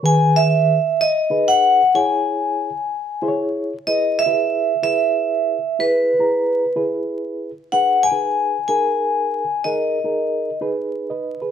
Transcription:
0.03 0.77 D#3 medium
0.03 0.77 G#4 medium
0.03 0.77 B4 medium
0.03 0.37 G#5 loud
0.36 1.02 E5 loud
1.01 1.49 D#5 medium
1.30 1.80 D#4 medium
1.30 1.81 G#4 medium
1.30 1.81 B4 medium
1.48 1.97 F#5 loud
1.95 2.69 E4 medium
1.95 2.69 G#4 medium
1.95 2.69 C#5 medium
1.95 3.35 G#5 medium
3.22 3.72 E4 medium
3.22 3.72 G#4 medium
3.22 3.27 C5 medium
3.28 3.75 C#5 medium
3.87 4.20 E4 medium
3.87 4.20 G#4 medium
3.87 4.20 B4 medium
3.87 4.20 D#5 loud
4.19 4.82 E5 loud
4.26 4.71 E4 medium
4.26 4.31 G4 medium
4.26 4.71 B4 medium
4.32 4.74 G#4 medium
4.83 5.57 E4 medium
4.83 5.57 G#4 medium
4.83 5.57 B4 medium
4.83 5.83 E5 loud
5.79 6.12 E4 medium
5.79 6.12 G#4 medium
5.79 6.12 B4 medium
5.79 6.72 B4 medium
6.19 6.64 E4 medium
6.19 6.64 G#4 medium
6.19 6.64 A#5 medium
6.76 7.50 E4 medium
6.76 7.50 G#4 medium
6.76 7.50 B4 medium
7.72 8.05 D#4 medium
7.72 8.05 G#4 medium
7.72 8.05 B4 medium
7.72 8.05 F#5 loud
8.03 8.67 G#5 loud
8.12 8.56 D#4 medium
8.12 8.57 G#4 medium
8.12 8.57 B4 medium
8.68 9.43 D#4 medium
8.68 9.43 G#4 medium
8.68 9.43 A#4 medium
8.68 9.68 G#5 loud
9.64 9.98 D#4 medium
9.64 9.98 G#4 medium
9.64 9.98 A#4 medium
9.64 10.57 D#5 medium
10.04 10.49 D#4 medium
10.04 10.49 G#4 medium
10.04 10.49 A#4 medium
10.61 11.35 D#4 medium
10.61 11.10 G#4 medium
10.61 11.10 B4 medium
11.10 11.40 B4 medium
11.10 11.40 D#5 medium
11.42 11.51 G#4 soft
11.42 11.51 B4 medium

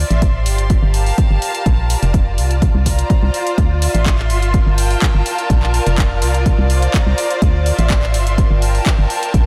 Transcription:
0.00 0.85 F4 medium
0.00 0.85 D5 medium
0.07 0.47 A1 medium
0.07 0.46 E5 medium
0.07 0.85 C6 medium
0.07 closed hi-hat medium
0.22 kick loud
0.22 closed hi-hat soft
0.46 0.76 G1 medium
0.46 1.90 G4 medium
0.46 open hi-hat loud
0.58 closed hi-hat medium
0.70 3.01 A#4 medium
0.70 1.90 F5 medium
0.70 kick loud
0.70 closed hi-hat soft
0.83 1.12 G1 medium
0.89 2.62 A5 medium
0.94 open hi-hat medium
1.06 open hi-hat medium
1.18 kick loud
1.18 closed hi-hat soft
1.30 1.38 G1 medium
1.42 9.46 F4 medium
1.42 open hi-hat loud
1.55 closed hi-hat medium
1.66 1.96 A#1 medium
1.66 kick loud
1.66 closed hi-hat soft
1.90 open hi-hat loud
1.96 4.69 D5 medium
2.03 2.39 F1 loud
2.03 closed hi-hat medium
2.14 kick loud
2.14 closed hi-hat soft
2.38 2.68 C2 medium
2.38 open hi-hat medium
2.51 closed hi-hat medium
2.62 kick loud
2.62 closed hi-hat soft
2.75 3.04 C2 medium
2.86 3.58 A#5 medium
2.86 kick medium
2.86 open hi-hat loud
2.93 3.87 C5 medium
2.99 closed hi-hat medium
3.10 kick loud
3.10 closed hi-hat soft
3.23 3.30 C2 medium
3.34 open hi-hat loud
3.47 closed hi-hat medium
3.58 3.88 D2 medium
3.58 kick loud
3.58 closed hi-hat soft
3.82 4.69 E5 medium
3.82 open hi-hat loud
3.91 4.32 A1 medium
3.91 4.69 C6 medium
3.91 closed hi-hat medium
4.06 kick loud
4.06 clap loud
4.06 closed hi-hat soft
4.19 clap soft
4.30 4.60 G1 loud
4.30 open hi-hat medium
4.42 closed hi-hat medium
4.48 6.85 A#4 medium
4.54 kick loud
4.54 closed hi-hat soft
4.67 4.96 G1 medium
4.74 5.74 G5 medium
4.74 6.46 A5 medium
4.78 open hi-hat loud
4.90 open hi-hat medium
5.02 kick loud
5.02 clap loud
5.02 closed hi-hat soft
5.15 5.22 G1 medium
5.26 open hi-hat medium
5.38 8.53 D5 medium
5.38 closed hi-hat medium
5.50 5.80 A#1 loud
5.50 kick loud
5.50 closed hi-hat soft
5.63 clap soft
5.74 open hi-hat medium
5.86 6.23 F1 loud
5.86 closed hi-hat medium
5.98 kick loud
5.98 clap loud
5.98 closed hi-hat soft
6.22 6.52 C2 medium
6.22 open hi-hat loud
6.34 closed hi-hat medium
6.46 kick loud
6.46 closed hi-hat soft
6.59 6.88 C2 medium
6.70 open hi-hat medium
6.75 7.71 C5 medium
6.82 closed hi-hat medium
6.89 7.42 A#5 medium
6.94 kick loud
6.94 clap loud
6.94 closed hi-hat soft
7.06 7.14 C2 medium
7.18 open hi-hat medium
7.31 closed hi-hat medium
7.42 7.72 D2 medium
7.42 kick loud
7.42 closed hi-hat soft
7.66 open hi-hat medium
7.75 8.16 A1 loud
7.75 8.53 E5 medium
7.75 8.53 C6 medium
7.75 closed hi-hat medium
7.90 kick loud
7.90 clap loud
7.90 closed hi-hat medium
8.03 clap soft
8.14 8.44 G1 loud
8.14 open hi-hat medium
8.27 closed hi-hat medium
8.35 9.46 A#4 medium
8.35 kick loud
8.35 closed hi-hat medium
8.51 8.80 G1 medium
8.57 9.46 G5 medium
8.57 9.46 A5 medium
8.62 open hi-hat medium
8.75 open hi-hat medium
8.86 kick loud
8.86 clap loud
8.86 closed hi-hat medium
8.99 9.06 G1 medium
9.10 open hi-hat medium
9.23 closed hi-hat medium
9.34 9.46 A#1 loud
9.34 kick loud
9.34 closed hi-hat soft

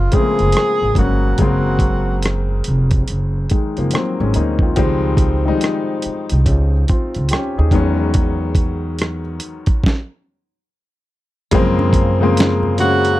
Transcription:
0.00 0.12 C#3 medium
0.00 0.13 F3 medium
0.00 0.13 G#3 medium
0.00 0.21 A#3 medium
0.00 0.15 C4 medium
0.00 0.99 C#4 medium
0.00 0.15 F4 medium
0.12 0.87 C#3 medium
0.12 0.87 F3 medium
0.12 0.88 G#3 medium
0.12 0.21 A3 soft
0.12 0.88 C4 medium
0.12 1.00 G#4 loud
0.12 kick medium
0.12 closed hi-hat medium
0.21 0.91 A#3 medium
0.39 0.53 F#1 medium
0.39 closed hi-hat soft
0.52 closed hi-hat medium
0.57 cross-stick loud
0.82 0.95 G#1 medium
0.95 1.32 G1 medium
0.95 1.34 C#3 medium
0.95 1.34 F#3 medium
0.95 1.34 G#3 medium
0.95 1.35 A#3 medium
0.95 1.35 C#4 medium
0.95 1.40 F#4 medium
0.95 kick medium
0.95 closed hi-hat medium
1.38 2.62 F#1 medium
1.38 2.86 C#3 medium
1.38 2.86 F#3 medium
1.38 2.87 G#3 medium
1.38 2.87 A#3 medium
1.38 2.87 C4 medium
1.38 2.20 F#4 medium
1.38 kick loud
1.38 closed hi-hat medium
1.79 kick medium
1.79 closed hi-hat medium
2.23 cross-stick medium
2.23 closed hi-hat medium
2.64 3.03 F1 medium
2.64 closed hi-hat medium
2.91 kick medium
2.91 closed hi-hat soft
3.08 3.45 F#1 medium
3.08 closed hi-hat medium
3.50 3.76 D#3 soft
3.50 3.75 G#3 medium
3.50 kick medium
3.50 closed hi-hat medium
3.77 3.91 F#1 medium
3.77 3.93 F3 soft
3.77 3.92 A#3 medium
3.77 closed hi-hat soft
3.91 4.18 F#3 medium
3.91 4.18 C4 medium
3.91 closed hi-hat medium
3.95 cross-stick loud
4.20 4.33 G#1 medium
4.20 4.35 G#3 medium
4.20 4.35 C#4 medium
4.34 4.71 D2 medium
4.34 4.60 A#3 medium
4.34 4.60 D#4 medium
4.34 closed hi-hat medium
4.59 4.77 C4 soft
4.59 5.02 F4 medium
4.59 kick medium
4.76 5.49 C#2 medium
4.76 5.33 D#3 loud
4.76 5.33 F3 medium
4.76 5.34 G3 medium
4.76 5.34 G#3 medium
4.76 5.34 C4 loud
4.76 kick loud
4.76 closed hi-hat medium
5.17 kick medium
5.17 closed hi-hat medium
5.45 6.70 D#3 medium
5.45 6.71 F3 medium
5.45 6.71 G3 medium
5.45 6.72 G#3 medium
5.45 6.72 D#4 medium
5.61 cross-stick medium
5.61 closed hi-hat medium
6.02 muted upright bass stroke soft
6.02 closed hi-hat medium
6.29 6.47 C2 medium
6.29 closed hi-hat soft
6.46 6.82 C#2 medium
6.46 kick medium
6.46 closed hi-hat medium
6.88 7.29 C4 soft
6.88 7.29 F4 medium
6.88 kick medium
6.88 closed hi-hat medium
7.15 7.29 C#2 medium
7.15 closed hi-hat soft
7.29 7.56 C#4 medium
7.29 7.56 G4 medium
7.29 closed hi-hat medium
7.33 cross-stick loud
7.58 7.72 D#2 medium
7.58 7.98 D#4 soft
7.58 7.97 G#4 medium
7.71 9.38 E2 medium
7.71 9.20 D#3 medium
7.71 9.20 F#3 medium
7.71 9.20 G#3 medium
7.71 9.21 B3 medium
7.71 9.21 C#4 medium
7.71 kick medium
7.71 closed hi-hat medium
8.14 kick loud
8.14 closed hi-hat medium
8.55 kick medium
8.55 closed hi-hat medium
8.99 cross-stick medium
8.99 closed hi-hat medium
9.40 closed hi-hat medium
9.66 kick medium
9.66 closed hi-hat soft
9.84 kick medium
9.84 snare medium
11.51 13.18 F#2 medium
11.51 12.09 C#3 loud
11.51 12.09 F3 medium
11.51 12.10 G#3 loud
11.51 12.10 A#3 loud
11.51 12.10 C4 loud
11.51 13.20 G#4 medium
11.51 13.20 F5 medium
11.51 13.20 A#5 loud
11.51 kick loud
11.51 closed hi-hat medium
11.51 low conga medium
11.79 high conga medium
11.93 kick medium
11.93 closed hi-hat medium
12.20 12.72 C#3 medium
12.20 12.72 F3 medium
12.20 12.72 G#3 medium
12.20 12.73 A#3 medium
12.20 12.73 C4 loud
12.37 snare loud
12.37 closed hi-hat medium
12.63 muted conga soft
12.63 low conga medium
12.78 13.20 C#3 medium
12.78 13.20 G#3 medium
12.78 13.20 A#3 medium
12.78 13.20 C#4 medium
12.78 13.20 F#4 loud
12.78 closed hi-hat medium
13.05 closed hi-hat soft

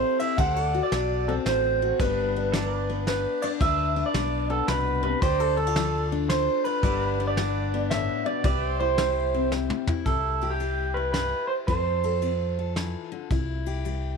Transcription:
0.00 0.35 E3 medium
0.00 0.37 C4 medium
0.00 0.19 E4 medium
0.00 0.37 G4 medium
0.00 0.37 A4 medium
0.00 0.19 C5 loud
0.00 0.37 C5 medium
0.19 0.36 E4 medium
0.19 0.38 E5 loud
0.19 ride medium
0.38 0.80 D2 medium
0.38 0.88 D3 medium
0.38 0.56 G4 medium
0.38 1.98 A4 medium
0.38 0.65 C5 medium
0.38 0.79 F#5 loud
0.38 kick loud
0.38 ride medium
0.56 2.00 A4 medium
0.65 1.99 D5 medium
0.74 1.81 F#4 medium
0.83 1.29 D5 loud
0.92 1.37 B1 medium
0.92 1.42 F#3 medium
0.92 snare medium
0.92 ride medium
1.28 1.98 C4 medium
1.28 1.33 A4 medium
1.45 1.91 A1 medium
1.45 1.96 A2 medium
1.45 2.00 C5 loud
1.45 snare medium
1.45 ride medium
1.82 1.98 F#4 medium
2.00 3.25 G1 medium
2.00 2.50 G2 medium
2.00 2.54 G3 medium
2.00 2.89 B3 medium
2.00 2.36 D4 medium
2.00 3.04 B4 loud
2.00 kick loud
2.00 ride medium
2.36 3.43 D4 medium
2.52 3.04 G3 medium
2.52 2.77 A4 medium
2.52 5.19 D5 medium
2.52 snare medium
2.52 ride medium
2.77 5.19 B4 medium
2.90 3.59 B3 medium
3.07 3.57 D3 medium
3.07 3.43 B4 medium
3.07 snare medium
3.07 ride medium
3.42 3.96 D4 medium
3.42 3.47 D5 medium
3.42 ride medium
3.60 4.02 D2 medium
3.60 4.11 G2 medium
3.60 5.20 B4 medium
3.60 4.06 E5 loud
3.60 kick loud
3.60 ride medium
3.96 5.57 D4 medium
4.06 4.50 D5 medium
4.14 4.60 B1 medium
4.14 4.64 G3 medium
4.14 snare loud
4.14 ride medium
4.50 5.20 B3 medium
4.50 4.67 A4 medium
4.68 5.14 C2 medium
4.68 5.03 B2 medium
4.68 5.02 B4 medium
4.68 snare medium
4.68 ride medium
5.03 5.22 C3 medium
5.03 5.21 B4 medium
5.22 6.47 D2 medium
5.22 5.72 D3 medium
5.22 5.40 G4 medium
5.22 5.47 B4 medium
5.22 5.54 C5 medium
5.22 6.82 D5 medium
5.22 kick loud
5.22 ride medium
5.40 6.83 A4 medium
5.47 6.82 A4 medium
5.57 5.67 D4 medium
5.57 6.07 A4 medium
5.67 6.65 F4 medium
5.76 6.26 F3 medium
5.76 snare medium
5.76 ride medium
6.12 6.82 D4 medium
6.29 6.80 A2 medium
6.29 6.62 C5 medium
6.29 snare medium
6.29 ride medium
6.64 6.82 F4 medium
6.64 7.27 B4 medium
6.64 ride medium
6.83 8.09 G1 medium
6.83 7.34 G2 medium
6.83 7.37 G3 medium
6.83 7.73 B3 medium
6.83 7.19 D4 medium
6.83 7.09 A4 medium
6.83 8.44 D5 medium
6.83 kick loud
6.83 ride medium
7.09 8.43 B4 medium
7.20 8.45 D4 medium
7.27 7.90 D5 loud
7.37 7.87 G3 medium
7.37 snare medium
7.37 ride medium
7.74 8.43 B3 medium
7.91 8.26 A2 medium
7.91 8.26 E5 loud
7.91 snare medium
7.91 ride medium
8.26 8.45 B2 medium
8.26 8.43 D5 loud
8.44 9.70 C2 medium
8.44 8.94 C3 medium
8.44 10.41 G4 medium
8.44 8.65 B4 medium
8.44 8.80 D5 loud
8.44 10.05 E5 medium
8.44 kick loud
8.44 ride medium
8.65 10.05 C5 medium
8.80 9.88 E4 medium
8.80 9.48 C5 medium
8.98 9.48 G3 medium
8.98 snare loud
8.98 ride medium
9.34 10.04 C4 medium
9.52 10.02 G2 medium
9.52 snare medium
9.70 mid tom medium
9.87 10.05 E4 medium
9.87 floor tom loud
10.05 11.32 C2 medium
10.05 10.57 C3 medium
10.05 10.96 E4 medium
10.05 10.52 A4 medium
10.05 kick loud
10.05 ride medium
10.41 11.69 G4 medium
10.41 ride medium
10.50 10.97 G4 medium
10.60 11.11 G3 medium
10.60 ride medium
10.94 11.67 E4 soft
10.94 11.12 B4 medium
11.13 11.64 G2 medium
11.13 11.47 B4 medium
11.13 snare medium
11.13 ride medium
11.47 11.53 C5 medium
11.67 12.94 F2 medium
11.67 12.19 F3 medium
11.67 12.21 C4 soft
11.67 13.29 F4 medium
11.67 12.03 A4 medium
11.67 12.72 C5 medium
11.67 kick medium
11.67 ride medium
12.03 12.58 A4 medium
12.03 ride medium
12.22 12.73 C4 medium
12.22 ride medium
12.59 13.29 A4 medium
12.76 13.11 E3 medium
12.76 snare medium
12.76 ride soft
13.12 13.30 D3 medium
13.30 14.17 C2 medium
13.30 13.81 C3 medium
13.30 14.17 E4 medium
13.30 kick loud
13.30 ride soft
13.66 14.17 G4 medium
13.66 ride medium
13.85 14.17 G3 medium
13.85 ride medium

